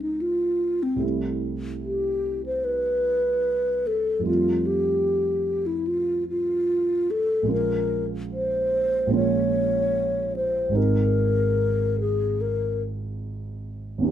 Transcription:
0.00 0.95 C#2 soft
0.00 0.96 F3 soft
0.00 0.97 G#3 soft
0.00 0.97 C4 soft
0.00 0.99 D#4 soft
0.00 0.23 D#4 soft
0.22 0.84 F4 soft
0.83 1.03 C4 soft
0.96 4.20 C2 soft
0.96 4.20 G3 soft
0.96 4.21 A3 soft
1.01 4.23 C4 soft
1.01 4.24 E4 soft
1.85 2.42 G4 soft
2.46 2.66 C5 soft
2.65 3.88 B4 medium
3.87 4.26 A4 soft
4.19 7.43 F2 soft
4.19 7.44 G3 soft
4.19 7.45 A3 soft
4.25 7.46 C4 soft
4.25 7.46 F4 soft
4.25 4.68 F4 soft
4.67 5.68 G4 soft
5.66 5.89 E4 soft
5.87 6.28 F4 soft
6.29 7.12 F4 soft
7.11 7.51 A4 medium
7.42 9.05 A#1 soft
7.42 9.06 G#3 soft
7.42 9.08 A#3 soft
7.48 9.09 C#4 soft
7.48 9.10 F4 soft
7.52 8.05 A#4 medium
8.33 9.10 C5 medium
9.07 10.69 A#1 soft
9.07 10.69 G#3 soft
9.07 10.70 A#3 soft
9.11 10.71 C#4 soft
9.11 10.72 F4 soft
9.16 10.34 C#5 medium
10.36 10.78 C5 medium
10.69 13.99 G#1 soft
10.69 14.00 G#3 soft
10.69 14.01 C4 soft
10.75 14.02 D#4 soft
10.75 14.03 G#4 soft
10.75 12.00 A#4 medium
12.01 12.43 G#4 medium
12.41 12.82 A#4 soft
13.98 14.11 D#2 soft
13.98 14.11 B3 soft
13.98 14.11 C#4 soft
14.03 14.11 D#4 soft
14.03 14.11 G4 soft

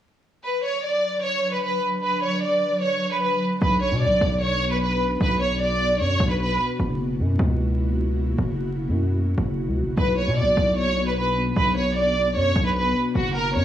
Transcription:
0.44 3.58 D3 medium
0.44 3.59 F#3 medium
0.44 3.59 D4 medium
0.44 0.62 B4 medium
0.44 3.59 B4 medium
0.64 0.82 C#5 medium
0.84 1.21 D5 medium
1.23 1.51 C#5 medium
1.53 1.62 B4 medium
1.63 1.81 B4 medium
2.03 2.21 B4 medium
2.23 2.41 C#5 medium
2.42 2.80 D5 medium
2.82 3.10 C#5 medium
3.12 3.21 B4 medium
3.22 3.40 B4 medium
3.62 3.93 B1 loud
3.62 13.11 B2 medium
3.62 6.76 B3 medium
3.62 6.76 D4 medium
3.62 13.11 F#4 medium
3.62 3.80 B4 medium
3.82 4.00 C#5 medium
3.91 4.08 B2 loud
4.01 4.39 D5 medium
4.06 4.20 B1 loud
4.21 5.17 B1 loud
4.41 4.69 C#5 loud
4.71 4.80 B4 medium
4.81 4.99 B4 medium
5.21 6.02 B1 loud
5.21 5.39 B4 medium
5.41 5.59 C#5 medium
5.60 5.98 D5 medium
6.00 6.19 F#2 loud
6.00 6.28 C#5 loud
6.20 6.58 B1 loud
6.30 6.39 B4 medium
6.40 6.58 B4 medium
6.79 7.21 F#1 loud
6.79 9.94 A#3 medium
6.79 9.94 E4 medium
7.19 7.38 F#2 loud
7.39 8.34 C#2 loud
8.38 8.90 F#1 loud
8.88 9.35 F#2 loud
9.38 9.69 F#1 loud
9.68 9.84 C#2 loud
9.83 9.97 F#1 loud
9.97 10.29 B1 loud
9.97 13.12 B3 medium
9.97 13.12 D4 medium
9.97 10.16 B4 medium
10.18 10.36 C#5 medium
10.27 10.44 B2 loud
10.37 10.74 D5 medium
10.42 10.56 B1 loud
10.57 11.52 B1 loud
10.77 11.05 C#5 loud
11.07 11.16 B4 medium
11.17 11.35 B4 medium
11.56 12.37 B1 loud
11.56 11.75 B4 medium
11.77 11.95 C#5 medium
11.96 12.34 D5 medium
12.36 12.55 F#2 loud
12.36 12.64 C#5 loud
12.56 12.94 B1 loud
12.65 12.75 B4 medium
12.76 12.94 B4 medium
13.15 13.56 F#1 loud
13.15 13.65 C#3 medium
13.15 13.65 A#3 medium
13.15 13.65 E4 medium
13.15 13.65 F#4 medium
13.15 13.34 F#4 medium
13.35 13.53 A#4 medium
13.55 13.65 F#2 loud
13.55 13.65 C#5 medium

